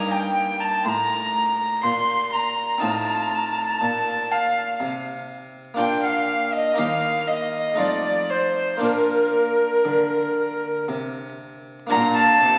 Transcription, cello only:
Already playing: G2
0.85 A2
1.84 A#2
2.82 A2
3.82 A#2
4.80 C3
5.79 A#2
6.79 D#2
7.79 F2
8.82 A#2
9.85 D3
10.89 C3
11.91 A#2
12.41 C3

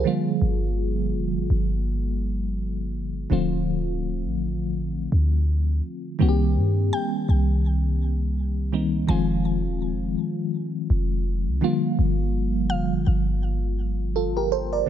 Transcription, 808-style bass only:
0.42 G1
1.14 F1
1.35 G1
1.50 G1
3.31 D1
4.25 A1
5.12 D2
6.21 C2
6.57 G2
7.29 C2
9.09 F1
9.67 D#1
9.92 F1
10.90 F1
11.47 C2
11.99 G1
12.71 F1
12.92 G1
13.07 G1

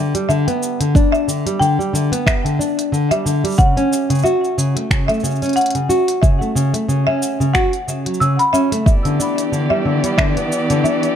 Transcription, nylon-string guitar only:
Already playing: D3
0.15 G3
0.29 D3
0.48 B3
0.80 D3
0.95 D4
1.28 D3
1.46 G3
1.61 D3
1.79 G3
1.93 D3
2.12 B3
2.45 D3
2.59 D4
2.92 D3
3.11 G3
3.26 D3
3.44 G3
3.58 C#3
3.77 C#4
4.10 C#3
4.24 F#4
4.58 C#3
4.76 A3
4.91 C#3
5.09 A3
5.23 C#3
5.42 C#4
5.75 C#3
5.89 F#4
6.23 C#3
6.41 A3
6.55 C#3
6.74 A3
6.88 C#3
7.07 C#4
7.40 C#3
7.55 F#4
7.88 C#3
8.06 F#3
8.21 C#3
8.54 C#4
8.72 A3
9.05 D3
9.20 D4
9.52 D3
9.71 G3
9.85 D3
10.04 G3
10.18 D3
10.37 B3
10.70 D3
10.84 D4

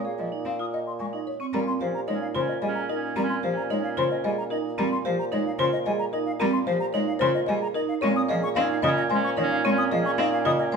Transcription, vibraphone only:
0.05 G#4
0.32 D#4
0.59 F4
1.13 D#4
1.40 C4
1.54 C4
1.81 G4
2.08 D#4
2.34 F4
2.62 G#4
2.89 D#4
3.16 C4
3.43 G4
3.70 D#4
3.97 F4
4.24 G#4
4.51 D#4
4.78 C4
5.05 G4
5.32 D#4
5.59 F4
5.86 G#4
6.13 D#4
6.40 C4
6.67 G4
6.94 D#4
7.21 F4
7.48 G#4
7.75 D#4
8.02 C4
8.29 G#4
8.57 D#4
8.84 F4
9.11 C5
9.37 D#4
9.65 C4
9.91 G#4
10.18 D#4
10.45 F4
10.72 C5

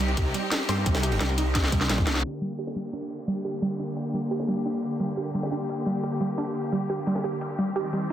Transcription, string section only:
Already playing: C4 D#4 G4
2.24 D3 A#3 G4
7.76 D#3 C4

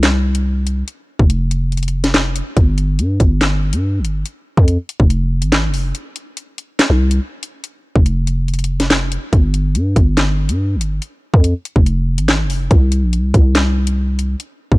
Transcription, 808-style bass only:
Already playing: C2
1.19 F1
2.57 G1
2.99 G2
3.20 G1
3.73 G2
3.99 G1
4.57 F2
5.00 F1
5.42 G#1
5.68 F1
6.90 C2
7.96 F1
9.33 G1
9.75 G2
9.96 G1
10.49 G2
10.75 G1
11.34 F2
11.76 F1
12.18 G#1
12.44 F1
12.71 C2
13.02 A#1
13.18 C2
13.34 C2
14.72 F1

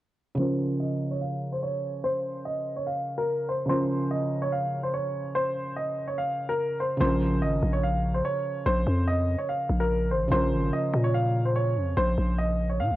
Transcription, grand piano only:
0.38 C5
0.80 D#5
1.11 C#5
1.21 F5
1.52 C5
1.63 C#5
2.04 C5
2.45 D#5
2.76 C#5
2.87 F5
3.18 A#4
3.49 C5
3.69 C5
4.11 D#5
4.42 C#5
4.52 F5
4.83 C5
4.94 C#5
5.35 C5
5.76 D#5
6.08 C#5
6.18 F5
6.49 A#4
6.80 C5
7.01 C5
7.42 D#5
7.73 C#5
7.83 F5
8.14 C5
8.25 C#5
8.66 C5
9.08 D#5
9.38 C#5
9.49 F5
9.80 A#4
10.11 C5
10.32 C5
10.73 D#5
11.04 C#5
11.14 F5
11.45 C5
11.56 C#5
11.97 C5
12.38 D#5
12.70 C#5
12.80 F5

